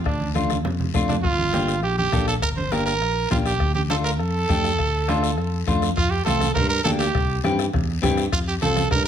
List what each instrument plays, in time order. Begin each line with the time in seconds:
0.05 picked electric bass D2, trumpet D4, bombo low, bombo rim, high conga, long guiro
0.20 high conga
0.35 clean electric guitar A3 D4 F4, bombo rim, high conga, short guiro
0.50 bombo rim, high conga, short guiro
0.65 picked electric bass F2, bombo rim, low conga, long guiro
0.80 low conga
0.94 picked electric bass F2, clean electric guitar A3 D4 F4, bombo low, bombo rim, low conga, short guiro
1.08 trumpet D4, bombo rim, low conga, short guiro
1.23 picked electric bass G1, trumpet F4, bombo low, bombo rim, long guiro
1.39 high conga
1.53 clean electric guitar A#3 D4 G4, bombo rim, high conga, short guiro
1.68 bombo rim, short guiro
1.83 picked electric bass A#1, trumpet G4, bombo rim, high conga, long guiro
1.98 trumpet G4, high conga
2.12 picked electric bass A#1, clean electric guitar A#3 D4 A4, bombo low, bombo rim, high conga, short guiro
2.28 trumpet A4, bombo rim, short guiro
2.42 picked electric bass G1, trumpet A#4, bombo low, bombo rim, high conga, long guiro
2.57 trumpet C5, high conga
2.72 clean electric guitar A#3 D4 G4, trumpet A#4, bombo rim, high conga, short guiro
2.86 trumpet A#4, bombo rim, short guiro
3.01 picked electric bass A#1, bombo rim, high conga, long guiro
3.30 picked electric bass A#1, clean electric guitar A#3 D4 G4, trumpet F4, bombo low, bombo rim, high conga, short guiro
3.46 trumpet G4, bombo rim, short guiro
3.60 picked electric bass D2, bombo low, bombo rim, high conga, long guiro
3.75 trumpet G4, high conga
3.90 clean electric guitar A3 D4 F4, trumpet A4, bombo rim, high conga, short guiro
4.04 trumpet A#4, bombo rim, short guiro
4.19 picked electric bass F2, trumpet A4, bombo rim, high conga, long guiro
4.49 picked electric bass F2, clean electric guitar A3 D4 G4, bombo low, bombo rim, high conga, short guiro
4.64 bombo rim, short guiro
4.79 picked electric bass D2, bombo low, bombo rim, high conga, long guiro
5.08 clean electric guitar A3 D4 F4, bombo rim, high conga, short guiro
5.23 bombo rim, short guiro
5.38 picked electric bass F2, bombo rim, high conga, long guiro
5.67 picked electric bass F2, clean electric guitar A3 D4 F4, bombo low, bombo rim, high conga, short guiro
5.82 bombo rim, short guiro
5.97 picked electric bass F2, trumpet F4, bombo low, bombo rim, long guiro
6.10 trumpet G4
6.25 picked electric bass C2, clean electric guitar A3 C4 F4, trumpet A4, bombo rim, high conga, short guiro
6.41 bombo rim, high conga, short guiro
6.54 picked electric bass G2, trumpet A#4, bombo low, bombo rim, low conga, long guiro
6.69 trumpet A#4
6.84 picked electric bass D2, clean electric guitar A#3 D4 G4, trumpet A4, bombo rim, high conga, short guiro
6.99 trumpet G4, bombo rim, short guiro
7.15 picked electric bass C2, bombo low, bombo rim, long guiro
7.44 picked electric bass G2, clean electric guitar C4 E4 G4, bombo rim, high conga, short guiro
7.59 bombo rim, short guiro
7.73 picked electric bass E2, bombo low, bombo rim, low conga, long guiro
8.02 picked electric bass G2, clean electric guitar C4 E4 G4, bombo low, bombo rim, high conga, low conga, short guiro
8.17 bombo rim, short guiro
8.32 picked electric bass F2, trumpet F4, bombo low, bombo rim, long guiro
8.47 trumpet G4
8.62 picked electric bass C2, clean electric guitar C4 F4 A4, trumpet A4, bombo rim, high conga, short guiro
8.76 bombo rim, high conga, short guiro
8.91 picked electric bass G2, trumpet A#4, bombo low, bombo rim, low conga, long guiro